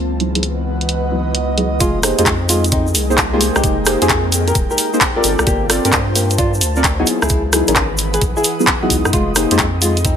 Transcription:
Already playing: C#2 E3 F#3 B3 D#4 E4 F#4 G#4 D#5
0.13 B4
0.20 F#3 B3 D#4 E4 G#4, closed hi-hat
0.35 F#3 B3 D#4 E4 G#4, closed hi-hat
0.40 F#5, closed hi-hat
0.67 D#5
0.81 closed hi-hat
0.89 closed hi-hat
1.12 F#3 B3 D#4 E4 F#4
1.35 closed hi-hat
1.57 F#3 B3 D#4 E4 G#4, closed hi-hat
1.80 F1 G#3 A#3 D#4 F4 D#5 G5, kick, closed hi-hat, shaker
2.03 A#3 D#4 G4 G#4 C5, cross-stick, open hi-hat, shaker
2.18 F2 G#3 A#3 D#4 F4 G4 G#4 C5, closed hi-hat, shaker
2.26 G#4, kick, clap, closed hi-hat, shaker
2.49 G#3 F4, open hi-hat, shaker
2.64 A#4, closed hi-hat, shaker
2.72 C4 D#4, kick, closed hi-hat
2.87 shaker
2.95 C2, open hi-hat, shaker
3.10 A#3 D#4 G4 G#4 C5, shaker
3.18 G5, kick, clap, closed hi-hat, shaker
3.33 G#3 A#3 D#4 F4 G4 G#4 C5
3.41 open hi-hat, shaker
3.55 C2 D#4 G4, cross-stick, shaker
3.64 F1, kick, closed hi-hat, shaker
3.86 A#3 D#4 G4 G#4 C5, cross-stick, open hi-hat, shaker
4.02 F2 A#3 D#4 F4 G4 G#4 C5, closed hi-hat, shaker
4.09 kick, clap, closed hi-hat, shaker
4.32 open hi-hat, shaker
4.47 G4 A#4, closed hi-hat, shaker
4.55 D#1, kick, closed hi-hat, shaker
4.70 G4 A#4, shaker
4.78 open hi-hat, shaker
4.93 A#3 D#4 G4 G#4 C5, shaker
5.01 kick, clap, closed hi-hat, shaker
5.16 C4 F4 G4 A4 A#4 D5
5.24 G1 F4 C5 F5 A5, open hi-hat, shaker
5.39 C2, cross-stick, shaker
5.43 G1 A#3 G4 C5, kick, closed hi-hat
5.48 shaker
5.70 C4 F4 A4 A#4 D5, cross-stick, open hi-hat, shaker
5.85 G2 A#3 C4 F4 G4 A4 A#4 D5, closed hi-hat, shaker
5.92 kick, clap, closed hi-hat, shaker
6.09 A5
6.15 A#3 G4, open hi-hat, shaker
6.30 closed hi-hat, shaker
6.38 D4 F4, kick, closed hi-hat, shaker
6.54 shaker
6.61 D2, open hi-hat, shaker
6.76 C4 F4 A4 A#4 D5, shaker
6.84 kick, clap, closed hi-hat, shaker
6.99 F#3 B3 D#4 E4 F#4 G#4
7.07 E3 D#5 F#5 B5, open hi-hat, shaker
7.21 C#2 E4 G#4 B4, cross-stick, shaker
7.29 C#2, kick, closed hi-hat, shaker
7.53 F#3 B3 D#4 E4 G#4, cross-stick, open hi-hat, shaker
7.68 G#1 F#3 B3 C#4 D#4 E4 G#4 A#4, closed hi-hat, shaker
7.76 kick, clap, closed hi-hat, shaker
7.96 F#5 D#6, open hi-hat, shaker
8.14 G#4 B4, closed hi-hat, shaker
8.21 B1, kick, closed hi-hat, shaker
8.37 E4 G#4, shaker
8.44 open hi-hat, shaker
8.60 F#3 B3 D#4 E4 G#4, shaker
8.67 kick, clap, closed hi-hat, shaker
8.82 F#3 B3 D#4 E4 F#4 G#4
8.90 C#2, kick, open hi-hat, shaker
9.05 F#2, cross-stick, shaker
9.13 F1 G#3 D#4 F4 F5 G5 C6, kick, closed hi-hat, shaker
9.31 G#4
9.36 A#3 D#4 G4 G#4 C5, cross-stick, open hi-hat, shaker
9.51 F2 G#3 A#3 D#4 F4 G4 G#4 C5, closed hi-hat, shaker
9.59 kick, clap, closed hi-hat, shaker
9.82 G#3 F4, open hi-hat, shaker
9.97 closed hi-hat, shaker
10.05 C4 D#4, kick, closed hi-hat, shaker
10.10 A#4

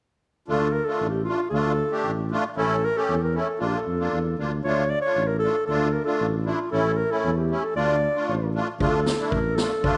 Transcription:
0.48 D2 A3 D4 F4 A4
0.73 A#4
0.85 A3 D4 F4 A4
1.00 A1
1.09 G4
1.24 A3 D4 F4
1.50 D2 A3 D4 F4 A4
1.91 A3 D4 G4
2.04 A1
2.31 A3 D4 F4
2.56 A1 A3 C#4 E4 A4
2.85 A#4
2.95 A3 C#4 G4 A4
3.09 E2
3.23 A#4
3.35 A3 C#4 E4 A4
3.59 A#1 A#3 D4 F4 A4
3.66 G4
3.76 A4
3.86 F2
3.99 A#3 D4 F4
4.11 E2
4.38 D2 A#3 D4 F4
4.64 D2 A3 D4 F4 C#5
4.89 D5
5.01 A3 D4 F4 C#5
5.17 A1
5.27 A#4
5.39 A4
5.43 A3 D4 F4
5.66 D2 A3 D4 F4 A4
5.93 A#4
6.05 A3 D4 F4 A4
6.20 A1
6.31 A4
6.44 A3 D4 E4 F4
6.71 A1 A3 C#4 E4 A4
6.97 A#4
7.10 A3 C#4 E4 A4
7.24 E2
7.37 G4
7.50 A3 C#4 E4
7.63 A4
7.76 D2 A3 D4 F4 D5
8.15 A3 D4 F4
8.29 A1
8.55 A3 D4 F4
8.80 D2 A3 D4 F4 A4, kick
9.06 snare
9.19 A3 D4 E4
9.30 A1 A#4, kick
9.56 A3 D4 F4 A4, snare
9.83 D2 A3 D4 F4, kick

